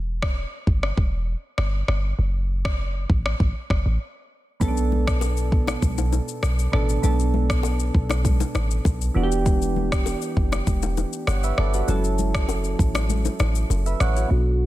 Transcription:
Already playing: E1
0.22 kick, cross-stick
0.67 G1, kick
0.83 cross-stick
0.97 E1, kick
1.58 G1, cross-stick
1.88 G1, cross-stick
2.19 F#1
2.65 kick, cross-stick
3.10 A1, kick
3.26 cross-stick
3.40 A1, kick
3.70 F#1, kick, cross-stick
3.86 A1
4.60 B1 B2 B3 C#4 A4, kick, low conga, shaker
4.68 D4
4.77 shaker
4.92 low conga
5.07 kick, cross-stick, shaker
5.21 high bongo, shaker
5.37 shaker
5.52 A1, kick
5.67 cross-stick, low bongo, shaker
5.82 B1, kick, low conga, shaker
5.98 low bongo, shaker
6.12 low bongo, shaker
6.28 shaker
6.43 B1, cross-stick, high bongo, shaker
6.59 shaker
6.72 A1 B2 B3 D4 A4, cross-stick
6.89 shaker
7.02 B1 B2 B3 D4 A4, low conga, shaker
7.19 shaker
7.34 low conga
7.50 kick, cross-stick, shaker
7.63 high bongo, shaker
7.80 shaker
7.95 B1, kick
8.10 cross-stick, low bongo, shaker
8.24 kick, low conga, shaker
8.40 low bongo, shaker
8.55 A1, cross-stick, low bongo, shaker
8.71 shaker
8.85 B1, kick, high bongo, shaker
9.01 shaker
9.14 E1 E3 B3 D4 F#4
9.23 G4
9.32 shaker
9.46 kick, low conga, shaker
9.62 shaker
9.76 low conga
9.92 kick, cross-stick, shaker
10.06 high bongo, shaker
10.22 shaker
10.37 F#1, kick
10.52 cross-stick, low bongo, shaker
10.67 E1, kick, low conga, shaker
10.82 low bongo, shaker
10.97 low bongo, shaker
11.13 shaker
11.27 G1 C#5 F#5, cross-stick, high bongo, shaker
11.43 B4 E5, shaker
11.58 G1 A4 D5, cross-stick
11.74 F#4 B4, shaker
11.88 F#1 F#3 C#4 E4 A4, low conga, shaker
12.04 shaker
12.18 low conga, shaker
12.35 kick, cross-stick, shaker
12.49 high bongo, shaker
12.64 shaker
12.79 A1, kick, shaker
12.95 cross-stick, low bongo, shaker
13.09 low conga, shaker
13.25 low bongo, shaker
13.39 A1, cross-stick, low bongo, shaker
13.55 shaker
13.70 F#1, high bongo, shaker
13.86 B4 E5, shaker
14.00 A1 C#5 F#5, cross-stick, shaker
14.16 F#4 C#5, shaker
14.28 B1 B2 B3 D4 F#4
14.33 A4

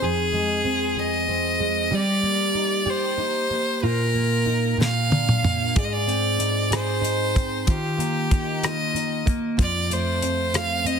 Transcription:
Already playing: D#4
0.01 F2 G#4
0.33 G#3
0.64 C4
0.96 G#4 D#5
1.28 C4
1.60 G#3
1.91 G3 G4
1.95 D5
2.23 A#3
2.54 D#4
2.86 G4
2.90 C5
3.17 D#4
3.50 A#3
3.82 A#2 F4 A#4
4.14 A#3
4.46 D#4
4.77 A#2, snare
4.82 F5
5.10 D4, high tom
5.29 mid tom
5.42 A#3, mid tom
5.75 G#2 G#4 D5, kick, closed hi-hat
5.85 D#5
5.93 D5
6.07 C4, closed hi-hat
6.38 D#4, closed hi-hat
6.71 G#4, cross-stick, closed hi-hat
6.75 C5
7.01 D#4, closed hi-hat
7.35 C4, kick, closed hi-hat
7.66 D#3 F4 G4, kick, closed hi-hat
7.98 A#3, closed hi-hat
8.31 D#4, kick, closed hi-hat
8.63 F4 D#5, cross-stick, closed hi-hat
8.94 D#4, closed hi-hat
9.26 A#3, kick, closed hi-hat
9.57 F2 F4, kick, closed hi-hat
9.63 D5
9.90 A3 C5, closed hi-hat
10.22 C4, closed hi-hat
10.54 F4 F5, cross-stick, closed hi-hat
10.85 C4 D#5, closed hi-hat

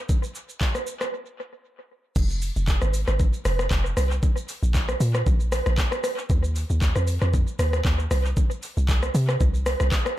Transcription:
0.09 kick, shaker
0.24 shaker
0.35 shaker
0.49 shaker
0.61 kick, clap, shaker
0.75 cross-stick, shaker
0.87 shaker
1.01 cross-stick, shaker
2.16 F1, kick, crash, shaker
2.30 shaker
2.42 open hi-hat, shaker
2.56 F1, shaker
2.68 kick, clap, shaker
2.82 G#1, cross-stick, shaker
2.94 open hi-hat, shaker
3.08 G#1, cross-stick, shaker
3.20 kick, shaker
3.34 shaker
3.45 F1, cross-stick, open hi-hat, shaker
3.59 cross-stick, shaker
3.71 F1, kick, clap, shaker
3.86 shaker
3.97 C2, cross-stick, open hi-hat, shaker
4.11 shaker
4.23 kick, shaker
4.37 shaker
4.49 open hi-hat, shaker
4.63 A#1, shaker
4.75 kick, clap, shaker
4.89 cross-stick, shaker
5.00 A#2, open hi-hat, shaker
5.15 cross-stick, shaker
5.27 A#1, kick, shaker
5.41 shaker
5.52 cross-stick, open hi-hat, shaker
5.66 A#1, cross-stick, shaker
5.78 kick, clap, shaker
5.92 cross-stick, shaker
6.04 cross-stick, open hi-hat, shaker
6.18 shaker
6.30 D#2, kick, shaker
6.44 shaker
6.56 open hi-hat, shaker
6.70 D#2, shaker
6.82 kick, clap, shaker
6.96 F2, cross-stick, shaker
7.07 open hi-hat, shaker
7.22 F2, cross-stick, shaker
7.34 kick, shaker
7.48 shaker
7.59 D#2, cross-stick, open hi-hat, shaker
7.73 cross-stick, shaker
7.85 D#2, kick, clap, shaker
8.00 shaker
8.11 C2, cross-stick, open hi-hat, shaker
8.25 shaker
8.37 kick, shaker
8.51 shaker
8.63 open hi-hat, shaker
8.77 C2, shaker
8.89 kick, clap, shaker
9.03 cross-stick, shaker
9.15 C3, open hi-hat, shaker
9.29 cross-stick, shaker
9.41 C2, kick, shaker
9.55 shaker
9.66 cross-stick, open hi-hat, shaker
9.80 C2, cross-stick, shaker
9.92 kick, clap, shaker
10.06 cross-stick, shaker

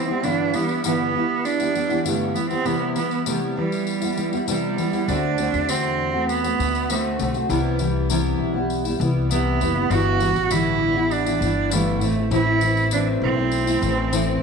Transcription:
Already playing: C4
0.07 G3 B3 E4
0.23 G2 D3 E3 G3 B3 D4 E4, tambourine
0.53 E3 G3 B3 E4, tambourine
0.69 tambourine
0.84 G2 D3 E3 G3 B3 E4, tambourine
1.14 E3 G3 B3 E4
1.45 D4, tambourine
1.59 E3 G3 B3 E4, tambourine
1.74 E3 G3 B3 E4, tambourine
1.89 E3 G3 B3 E4, tambourine
2.04 G2 D3 E3 G3 A3 B3 E4, tambourine
2.34 E3 G3 B3 E4, tambourine
2.49 G3 B3 C4 E4, tambourine
2.64 C3 E3 G3 B3 E4, tambourine
2.95 E3 G3 B3 E4, tambourine
3.11 tambourine
3.26 C3 E3 G3 A3 B3 E4, tambourine
3.56 E3 G3 B3 E4
3.72 tambourine
3.87 tambourine
4.01 G3 B3 E4, tambourine
4.16 E3 G3 B3 E4, tambourine
4.32 G3 B3 E4, tambourine
4.47 C3 E3 G3 B3 E4, tambourine
4.77 E3 G3 B3 E4, tambourine
4.92 G3 B3 E4, tambourine
5.07 D2 D3 A3 C4 D4 F#4, tambourine
5.37 D3 A3 C4 F#4, tambourine
5.54 E2, tambourine
5.68 D3 A3 C4 F#4, tambourine
6.13 A3 C4 F#4
6.29 B3, tambourine
6.44 A3 C4 F#4, tambourine
6.58 D2 D3 A3 F#4, tambourine
6.75 tambourine
6.89 D3 A3 C4 F#4, tambourine
7.19 B1 D3 A3 C4 F#4, tambourine
7.34 A3 C4 F#4, tambourine
7.49 C2 C3 E3 G3 B3 E4, tambourine
7.79 E3 G3 B3 E4, tambourine
8.09 C3 E3 G3 B3 E4, tambourine
8.39 B1
8.54 G3 B3 E4
8.70 tambourine
8.84 G3 B3 E4, tambourine
9.00 C2 E3 G3 B3 E4, tambourine
9.30 C3 E3 G3 B3 E4, tambourine
9.60 F#1 E3 G3 B3 E4, tambourine
9.74 G3 B3 E4
9.90 G1 G2 D3 E3 G3 B3 E4 F#4, tambourine
10.19 E3 G3 B3 E4, tambourine
10.35 A1, tambourine
10.50 G2 D3 E3 G3 B3 E4, tambourine
10.95 E3 G3 B3 E4
11.11 D4, tambourine
11.25 E3 G3 B3 E4, tambourine
11.40 G1 E3 G3 B3 E4, tambourine
11.71 G2 D3 E3 G3 A3 B3 E4, tambourine
12.01 A1 E3 A3 C4 E4, tambourine
12.15 A3 C4 E4
12.31 A1 A2 E3 A3 C4 E4, tambourine
12.61 E3 A3 C4 E4, tambourine
12.77 tambourine
12.91 A2 E3 A3 C4 D4 E4, tambourine
13.22 B1 C4
13.36 A3 C4 E4
13.52 tambourine
13.66 A3 C4 E4, tambourine
13.81 A1 E3 A3 C4 E4, tambourine
14.11 A2 E3 A3 C4 E4, tambourine

